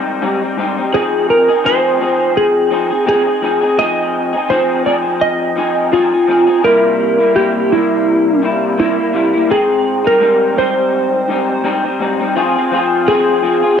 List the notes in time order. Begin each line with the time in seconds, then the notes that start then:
Already playing: G#2 G3 C4 D#4
0.21 G#2 G3 C4 D#4
0.41 G3 C4 D#4
0.57 G#2 G3 C4 D#4
0.77 G3 C4 D#4
0.93 F3 C4 D#4 G#4
1.30 A#4
1.48 C4 D#4 G#4
1.64 F3 C4 D#4 G#4 C5
2.00 F3 C4 D#4 G#4
2.37 G#4
2.71 F3 C4 D#4 G#4
2.90 C4 D#4 G#4
3.06 F3 C4 D#4 G#4
3.25 C4 D#4 G#4
3.42 F3 C4 D#4 G#4
3.61 C4 D#4 G#4
3.78 F3 C4 D#4 G#4 D#5
4.33 C4 D#4 G#4
4.50 F3 C4 D#4 G#4 C5
4.85 F3 C4 D#4 G#4 D5
5.21 D#5
5.56 F3 C4 D#4 G#4
5.92 F3 C4 D#4 F4 G#4
6.11 C4 D#4 G#4
6.28 F3 C4 D#4 G#4
6.47 C4 D#4 G#4
6.63 C3 G3 A#3 E4 A#4
7.19 G3 A#3 E4
7.35 C3 G3 A#3 E4 G4
7.71 C3 G3 A#3 E4
8.42 C3 G3 A#3 E4
8.78 C3 G3 A#3 E4
8.97 G3 A#3 E4
9.13 C3 G3 A#3 E4
9.33 G3 A#3 E4
9.49 G#2 C4 D#4 G#4
10.04 G3 C4 D#4 A#4
10.20 G#2 G3 C4 D#4
10.56 G#2 G3 C4 D#4 C5
11.28 G#2 G3 C4 D#4
11.64 G#2 G3 C4 D#4
11.83 G3 C4 D#4
11.99 G#2 G3 C4 D#4
12.19 G3 C4 D#4
12.36 F3 C4 F4 G#4
12.55 C4 F4 G#4
12.71 F3 C4 F4 G#4
13.07 F3 C4 F4 G#4
13.42 F3 C4 F4 G#4
13.62 C4 F4 G#4